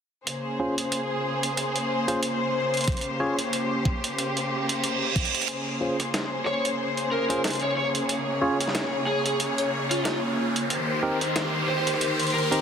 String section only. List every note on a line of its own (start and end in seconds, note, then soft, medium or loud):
0.26 5.44 C#3 medium
0.26 5.44 A#3 medium
0.26 2.85 G#4 medium
0.26 5.44 C5 medium
2.88 5.46 G4 medium
5.49 10.66 C#3 medium
5.49 12.61 A#3 medium
5.49 10.66 G#4 medium
5.49 8.07 C5 medium
8.09 10.68 C#5 medium
10.70 12.61 D#3 medium
10.70 12.61 G4 medium
10.70 12.61 C5 medium